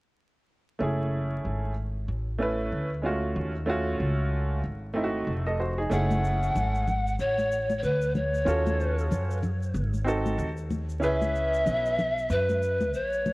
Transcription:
0.79 upright bass F#1, upright piano A3 C#4 E4 G#4
1.45 upright bass G#1
2.08 upright bass A1
2.39 upright piano A3 C#4 E4 B4
2.72 upright bass D2
3.02 upright piano G#3 C#4 F4
3.06 upright piano A3 F#4
3.36 upright bass D#2
3.66 upright piano A3 C#4 F4 F#4
4.00 upright bass C#2
4.64 upright bass G#1
4.94 upright piano A3 C4 D#4 E4
5.04 upright piano F#4
5.27 upright bass F1
5.47 upright piano A4 D#5
5.60 upright piano F#4 C5
5.78 upright piano D#4 G#4
5.90 upright bass F#1, upright piano A3 C#4 E4, pan flute F#5, shaker
5.94 upright piano G#4
6.11 high conga, shaker
6.24 shaker
6.43 shaker
6.55 upright bass G#1, low conga, shaker
6.75 shaker
6.88 low conga, shaker
7.07 shaker
7.19 upright bass A1, pan flute C#5, shaker
7.38 high conga, shaker
7.52 shaker
7.70 high conga, shaker
7.78 pan flute C#5
7.83 upright bass D2, pan flute B4, shaker
8.02 shaker
8.15 pan flute C#5, high conga, low conga, shaker
8.34 shaker
8.45 upright bass D#2, upright piano C#4 F4 F#4 A4, shaker
8.67 high conga, shaker
8.80 shaker
8.98 shaker
9.11 upright bass F#2, low conga, shaker
9.31 shaker
9.43 low conga, shaker
9.63 shaker
9.74 upright bass G#1, shaker
9.94 high conga, shaker
10.04 upright piano C4 D#4 F#4 A4, shaker
10.26 high conga, shaker
10.38 upright bass D#2, shaker
10.57 shaker
10.71 high conga, low conga, shaker
10.89 shaker
11.00 upright bass C#2, upright piano C#4 E4 G#4 B4, shaker
11.04 pan flute E5
11.22 high conga, shaker
11.35 shaker
11.54 shaker
11.66 upright bass B1, low conga, shaker
11.85 shaker
11.98 low conga, shaker
12.18 shaker
12.29 upright bass F#2, pan flute B4, shaker
12.49 high conga, shaker
12.62 shaker
12.80 high conga, shaker
12.93 upright bass A#1, pan flute C#5, shaker
13.12 shaker
13.26 high conga, low conga, shaker

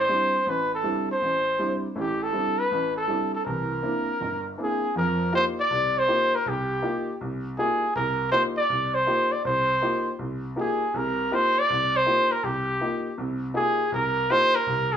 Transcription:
0.00 trumpet C5
0.09 upright piano G3 C4 D4 E4
0.46 upright piano A1, trumpet B4
0.74 trumpet A4
0.83 upright piano G3 C4 D4 E4
1.11 trumpet C5
1.21 upright piano A1
1.58 upright piano G3 C4 D4 E4
1.96 upright piano A1 A2, trumpet G4
2.23 trumpet A4
2.33 upright piano G3 C4 D4 E4
2.59 trumpet B4
2.71 upright piano A1
2.96 trumpet A4
3.08 upright piano G3 C4 D4 E4
3.34 trumpet A4
3.45 upright piano C2 E3, trumpet A#4
3.83 upright piano A#3 C4 D4 E4
4.21 upright piano G1
4.58 upright piano A#3 C4 D4 E4, trumpet G#4
4.96 upright piano F2 F3, trumpet A#4
5.32 upright piano A#3 D#4 F4 G4, trumpet C5
5.60 trumpet D5
5.71 upright piano C2 C3
5.99 trumpet C5
6.08 upright piano A#3 D#4 F4 G4
6.35 trumpet A#4
6.46 upright piano C2, trumpet G4
6.82 upright piano A#3 D#4 F4 G4
7.21 upright piano C2
7.58 upright piano A#3 D#4 F4 G4, trumpet G#4
7.95 upright piano C2, trumpet A#4
8.31 upright piano A#3 D#4 F4 G4, trumpet C5
8.57 trumpet D5
8.70 upright piano C2
8.94 trumpet C5
9.07 upright piano A#3 D#4 F4 G4
9.32 trumpet D5
9.45 upright piano C2, trumpet C5
9.82 upright piano A#3 D#4 F4 G4
10.19 upright piano C2
10.56 upright piano A#3 D#4 F4 G4, trumpet G#4
10.94 upright piano C2 C3, trumpet A#4
11.31 upright piano A#3 D#4 F4 G4, trumpet C5
11.59 trumpet D5
11.70 upright piano C2
11.96 trumpet C5
12.06 upright piano A#3 D#4 F4 G4
12.32 trumpet A#4
12.43 upright piano C2, trumpet G4
12.81 upright piano A#3 D#4 F4 G4
13.18 upright piano C2 C3
13.54 upright piano A#3 D#4 F4 G4, trumpet G#4
13.92 upright piano C2, trumpet A#4
14.30 upright piano A#3 D#4 F4 G4, trumpet C5
14.55 trumpet A#4
14.66 upright piano C2 C3
14.93 trumpet G#4

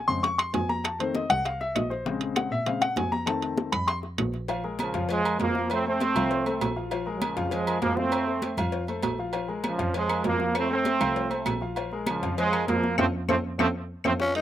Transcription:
0.07 double bass F2, grand piano C#3 G#3 C4 C6, high conga
0.23 grand piano C#6, high bongo, high conga, high timbale
0.38 grand piano C6, high bongo, high conga, high timbale, claves
0.53 double bass F2, grand piano G#5, high bongo, low bongo, high conga, high timbale, low timbale
0.69 grand piano A#5, high bongo, high conga
0.84 grand piano A5, high bongo, high conga, high timbale, claves
0.99 grand piano D#3 A3 C4 C5, high bongo, high conga, high timbale
1.15 grand piano D#5, high bongo, high conga, low timbale
1.30 double bass C2, grand piano F#5, low conga, high timbale, claves
1.45 grand piano F5, high bongo, high timbale
1.60 grand piano E5, high bongo, high conga
1.75 double bass A#1, grand piano D#5, high bongo, low bongo, high conga, high timbale, low timbale, claves
1.90 grand piano C5, high bongo, high conga
2.06 grand piano C#3 G#3 C4, high bongo, high conga
2.21 high bongo, high conga, high timbale
2.36 grand piano F#5, high bongo, high conga, high timbale, low timbale, claves
2.51 double bass A#2, grand piano E5, high conga
2.66 grand piano C#3 G#3 C4 F5, high bongo, high conga, high timbale
2.81 grand piano F#5, high bongo, high conga, high timbale, claves
2.96 double bass F2, grand piano G#5, high bongo, low bongo, high conga, high timbale, low timbale
3.12 grand piano A#5, high bongo, high conga
3.26 grand piano D#3 A3 C4 A5, high bongo, high timbale, claves
3.42 high bongo, high conga, high timbale
3.58 high bongo, high conga, low timbale
3.72 double bass F2, grand piano B5, low conga, high timbale, claves
3.88 grand piano C6, high bongo, high conga, high timbale
4.03 high bongo, high conga
4.18 double bass A#1, high bongo, low bongo, high conga, high timbale, low timbale, claves
4.34 high bongo, high conga
4.48 grand piano F3 F4 F5, cowbell, high conga, low agogo
4.64 grand piano G#3 G#4 A#4, high conga
4.79 trombone section C#3 F3, cowbell, high conga, low timbale, low agogo
4.94 double bass F2, grand piano F3 F4 F5, cowbell, high conga
5.09 trombone section F3 G#3, cowbell, high conga, low agogo
5.25 grand piano G#3 G#4 A#4, high conga, low agogo
5.39 double bass F2, trombone section F3 A#3, cowbell, high conga, low timbale
5.55 grand piano F3 F4 F5, high conga
5.70 trombone section A3 C4, cowbell, high conga, low agogo
5.86 grand piano A3 A4 C5, trombone section A3 C4, high conga
6.00 grand piano A3 A4 C5, cowbell, high conga, low timbale, low agogo
6.15 double bass C2, grand piano F3 F4 F5, cowbell, low conga, low agogo
6.31 cowbell, high conga
6.46 grand piano A3 A4 C5, high conga, low agogo
6.60 double bass A#1, cowbell, high conga, low timbale, low agogo
6.76 grand piano F3 F4 F5, high conga
6.91 grand piano F3 F4 F5, cowbell, high conga, low agogo
7.06 grand piano G#3 G#4 A#4, high conga
7.16 trombone section F#3
7.22 trombone section C#3 F3, cowbell, high conga, low timbale, low agogo
7.36 double bass F2, grand piano F3 F4 F5, cowbell, high conga
7.51 trombone section F3 G#3, cowbell, high conga, low agogo
7.67 grand piano G#3 G#4 A#4, high conga, low agogo
7.81 double bass F2, trombone section F3 A#3, cowbell, high conga, low timbale
7.96 grand piano F3 F4 F5, trombone section A3 C4, high conga
8.12 cowbell, high conga, low agogo
8.27 grand piano A3 A4 C5, high conga
8.42 grand piano A3 A4 C5, cowbell, high conga, low timbale, low agogo
8.57 double bass F2, grand piano F3 F4 F5, cowbell, low conga, low agogo
8.72 cowbell, high conga
8.87 grand piano A3 A4 C5, high conga, low agogo
9.03 double bass A#1, cowbell, high conga, low timbale, low agogo
9.18 grand piano F3 F4 F5, high conga
9.33 grand piano F3 F4 F5, cowbell, high conga, low agogo
9.48 grand piano G#3 G#4 A#4, high conga
9.64 trombone section C#3 F3, cowbell, high conga, low timbale, low agogo, claves
9.78 double bass F2, grand piano F3 F4 F5, cowbell, high conga
9.94 trombone section F3 G#3, cowbell, high conga, low agogo
10.09 grand piano G#3 G#4 A#4, high conga, low agogo, claves
10.24 double bass F2, trombone section F3 A#3, cowbell, high conga, low timbale
10.39 grand piano F3 F4 F5, high conga
10.55 trombone section A3 C4, cowbell, high conga, low agogo, claves
10.69 grand piano A3 A4 C5, trombone section A3 C4, high conga
10.85 grand piano A3 A4 C5, cowbell, high conga, low timbale, low agogo
11.00 double bass C2, grand piano F3 F4 F5, cowbell, low conga, low agogo, claves
11.16 cowbell, high conga
11.30 grand piano A3 A4 C5, high conga, low agogo
11.46 double bass A#1, cowbell, high conga, low timbale, low agogo, claves
11.61 grand piano F3 F4 F5, high conga
11.76 grand piano F3 F4 F5, cowbell, high conga, low agogo
11.91 grand piano G#3 G#4 A#4, high conga
12.06 trombone section C#3 F3, cowbell, high conga, low timbale, low agogo, claves
12.22 double bass F2, grand piano F3 F4 F5, cowbell, high conga
12.37 trombone section F3 G#3, cowbell, high conga, low agogo
12.52 grand piano G#3 G#4 A#4, high conga, low agogo, claves
12.67 double bass F2, trombone section F3 A#3, cowbell, high conga, low timbale
12.83 grand piano F3 F4 F5, high conga
12.98 double bass F2, trombone section F3 A3 C4, grand piano F4 A4 C5, cowbell, high conga, high timbale, claves
13.28 double bass F2, trombone section F3 A3 C4, grand piano F4 A4 C5, cowbell, high conga, high timbale, claves
13.58 double bass F2, trombone section F3 A3 C4, grand piano F4 A4 C5, cowbell, high conga, high timbale, claves
14.04 double bass F2, trombone section F3 A3 C4, grand piano F4 A4 C5, cowbell, high conga, high timbale, claves
14.20 grand piano F3 F4 F5, tenor saxophone C#4, high bongo
14.35 grand piano G#3 G#4 A#4, tenor saxophone D#4, high bongo, high conga, high timbale

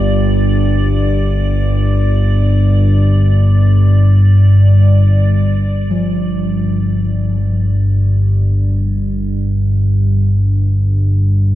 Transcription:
Already playing: synth drone G1 G2, kettle gongs G2 F4, ambient pad D5
5.90 synth drone G1 G2, kettle gongs F3

